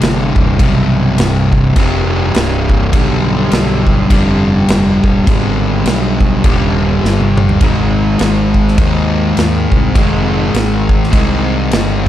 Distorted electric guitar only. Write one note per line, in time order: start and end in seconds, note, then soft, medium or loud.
0.00 0.58 C2 medium
0.00 0.59 G2 medium
0.00 0.59 C3 medium
0.59 1.75 C2 medium
0.59 1.75 G2 medium
0.59 1.76 C3 loud
1.76 2.92 C2 medium
1.76 2.92 G2 medium
1.76 2.93 C3 medium
2.93 4.08 G2 medium
2.93 4.09 D3 loud
2.93 4.11 G3 medium
4.10 5.26 G2 medium
4.10 5.26 D3 medium
4.10 5.26 G3 medium
5.27 6.43 G2 medium
5.27 6.44 D3 medium
5.27 6.44 G3 loud
6.44 7.59 G2 medium
6.44 7.61 D3 medium
6.44 7.61 G3 medium
7.60 8.77 G#2 medium
7.60 8.78 D#3 medium
7.60 8.80 G#3 medium
8.78 9.93 G#2 medium
8.78 9.95 D#3 medium
8.78 9.95 G#3 loud
9.94 11.11 G#2 medium
9.94 11.11 D#3 medium
9.94 11.12 G#3 medium
11.12 12.09 G#2 medium
11.12 12.09 D#3 medium
11.12 12.09 G#3 medium